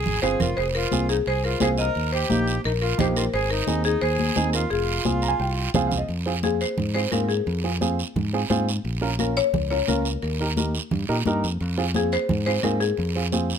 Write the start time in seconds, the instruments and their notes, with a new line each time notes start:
Already playing: accordion G#4
0.06 fingered electric bass G#1, low conga
0.22 fingered electric bass G1, upright piano C4 F4 G#4, accordion G#4, marimba C5, short guiro
0.40 fingered electric bass F1, accordion F4, marimba A#4, low conga, short guiro
0.57 fingered electric bass F1, accordion G#4, marimba C5, long guiro
0.75 accordion F4, marimba A#4
0.92 fingered electric bass C2, upright piano C4 F4 G#4, high conga, short guiro
1.09 accordion D#4, marimba G#4, short guiro
1.26 fingered electric bass C2, accordion G#4, marimba C5, long guiro
1.44 accordion F4, marimba A#4
1.60 fingered electric bass C2, upright piano C4 F4 G#4, accordion G#4, marimba C5, high conga, short guiro
1.78 accordion A#4, marimba D#5, short guiro
1.95 fingered electric bass D#2, long guiro
2.12 accordion G4, marimba C5
2.30 fingered electric bass A#1, upright piano A#3 D#4 G4, high conga, short guiro
2.48 short guiro
2.64 fingered electric bass A#1, accordion D#4, marimba A#4, long guiro
2.82 accordion F4, marimba A#4
2.98 fingered electric bass A#1, upright piano A#3 D#4 G4, accordion G4, marimba C5, high conga, low conga, short guiro
3.16 accordion F4, marimba A#4, short guiro
3.34 fingered electric bass G#1, accordion G#4, marimba C5, long guiro
3.50 accordion D#4, marimba A#4
3.67 fingered electric bass D#2, upright piano C4 D#4 G#4, high conga, short guiro
3.84 accordion D#4, marimba G#4, short guiro
4.01 fingered electric bass D#2, accordion G#4, marimba C5, long guiro
4.19 high conga
4.36 fingered electric bass D#2, upright piano C4 D#4 G#4, high conga, short guiro
4.53 accordion F4, marimba A#4, short guiro
4.70 fingered electric bass F1, accordion F4, marimba G#4, long guiro
5.05 fingered electric bass C2, upright piano C4 F4 G#4, high conga, short guiro
5.22 upright piano A#5, short guiro
5.28 upright piano G#5
5.40 fingered electric bass C2, upright piano G5, long guiro
5.74 fingered electric bass C2, upright piano C4 F4 G#4 F5, high conga, low conga, short guiro
5.87 upright piano F5
5.91 low conga, short guiro
5.98 upright piano D#5
6.08 fingered electric bass F2, high conga, long guiro
6.26 upright piano C4 F4 G#4
6.43 upright piano C4 F4 G#4, marimba G#4, high conga, short guiro
6.61 marimba C5, short guiro
6.78 fingered electric bass G#2, high conga, low conga, long guiro
6.95 upright piano C4 F4 G#4, marimba C5
7.12 fingered electric bass G#2, upright piano C4 F4 G#4, marimba A#4, high conga, short guiro
7.29 marimba G#4, short guiro
7.47 fingered electric bass F2, high conga, long guiro
7.64 upright piano C4 F4 G#4
7.81 upright piano C4 F4 G#4, high conga, short guiro
7.99 short guiro
8.16 fingered electric bass G#2, high conga, low conga, long guiro
8.33 upright piano C4 F4 G#4
8.50 fingered electric bass G#2, upright piano C4 F4 G#4, high conga, short guiro
8.69 short guiro
8.85 fingered electric bass A#1, high conga, long guiro
9.01 upright piano C#4 F4 A#4
9.19 upright piano C#4 F4 A#4, marimba A#4, high conga, short guiro
9.37 marimba C#5, short guiro
9.53 fingered electric bass C#2, high conga, low conga, long guiro
9.71 upright piano C#4 F4 A#4, marimba C#5
9.87 fingered electric bass C#2, upright piano C#4 F4 A#4, marimba A#4, high conga, short guiro
10.05 short guiro
10.22 fingered electric bass D#2, marimba A#4, high conga, long guiro
10.40 upright piano D#4 G4 A#4
10.57 upright piano D#4 G4 A#4, high conga, short guiro
10.75 short guiro
10.91 fingered electric bass G2, high conga, low conga, long guiro
11.09 fingered electric bass A#2, upright piano D#4 G4 A#4
11.26 fingered electric bass G2, upright piano D#4 G4 A#4, high conga, short guiro
11.44 fingered electric bass F2, short guiro
11.61 fingered electric bass F2, high conga, long guiro
11.78 upright piano C4 F4 G#4
11.94 upright piano C4 F4 G#4, marimba G#4, high conga, short guiro
12.12 marimba C5, short guiro
12.29 fingered electric bass G#2, high conga, low conga, long guiro
12.46 upright piano C4 F4 G#4, marimba C5
12.63 fingered electric bass G#2, upright piano C4 F4 G#4, marimba A#4, high conga, short guiro
12.80 marimba G#4, short guiro
12.97 fingered electric bass F2, high conga, long guiro
13.16 upright piano C4 F4 G#4
13.32 upright piano C4 F4 G#4, high conga, short guiro
13.50 short guiro